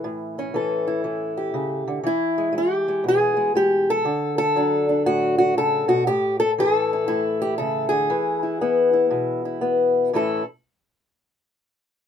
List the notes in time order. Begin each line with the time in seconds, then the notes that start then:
Already playing: E3 E4
0.04 A2
0.39 C#4
0.54 E3 A4
0.88 E4
1.04 E3
1.37 G4
1.54 C#3
1.88 D3
2.03 E3 E4
2.38 G#3
2.53 G#3
2.58 G4
2.88 G#3
3.04 B2
3.08 G#4
3.37 G#3
3.55 G#3 G4
3.90 A4
4.05 D3
4.38 A4
4.56 F#3 D4
4.89 D4
5.06 A2 F#4
5.38 F#4
5.57 C#3 A4
5.88 B2 F#4
6.07 A2 G4
6.40 A4
6.58 E3 A4
6.93 E4
7.08 A2 E4
7.42 G4
7.58 C#3 A4
7.89 D3 G#4
8.10 E3
8.43 E4
8.61 B3 E4
8.93 E4
9.11 B2
9.45 E4
9.61 B3
10.13 A2 E3 C#4 E4 A4